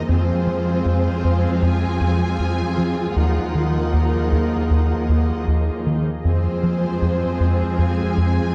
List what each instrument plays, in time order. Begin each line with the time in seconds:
0.09 analog synth bass F2, cello section F2, viola section F3 C4, ambient pad F3 G#3 G#4 F5, violin section F4 G#4 C5
0.47 analog synth bass F3
0.86 analog synth bass F2
1.24 analog synth bass F2
1.62 analog synth bass F2, violin section G#5
2.01 analog synth bass F2
2.40 analog synth bass F2
2.78 analog synth bass F3
3.16 analog synth bass D#2, cello section D#2, ambient pad A#3 D#5, viola section D#4, violin section A#4 F#5
3.55 analog synth bass D#3
3.93 analog synth bass D#2
4.32 analog synth bass D#2
4.71 analog synth bass D#2
5.09 analog synth bass D#2
5.47 analog synth bass D#2
5.87 analog synth bass D#3
6.24 cello section F2, analog synth bass F2, ambient pad F3 G#3 G#4 C5, viola section F3 C4, violin section F4 G#4 C5
6.64 analog synth bass F3
7.02 analog synth bass F2
7.40 analog synth bass F2
7.79 analog synth bass F2, violin section G#5
8.18 analog synth bass F2